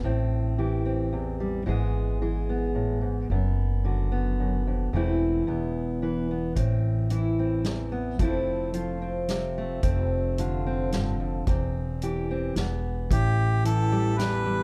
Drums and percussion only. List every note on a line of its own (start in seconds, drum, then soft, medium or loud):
6.56 kick medium
6.56 closed hi-hat soft
7.10 closed hi-hat soft
7.64 snare medium
7.64 closed hi-hat soft
8.19 kick medium
8.19 closed hi-hat soft
8.74 closed hi-hat soft
9.28 snare medium
9.28 closed hi-hat soft
9.83 kick medium
9.83 closed hi-hat soft
10.38 closed hi-hat soft
10.92 snare medium
10.92 closed hi-hat soft
11.47 kick medium
11.47 closed hi-hat soft
12.02 closed hi-hat soft
12.56 snare medium
12.56 closed hi-hat soft
13.11 kick medium
13.11 closed hi-hat medium
13.65 closed hi-hat medium
14.19 snare medium
14.19 closed hi-hat medium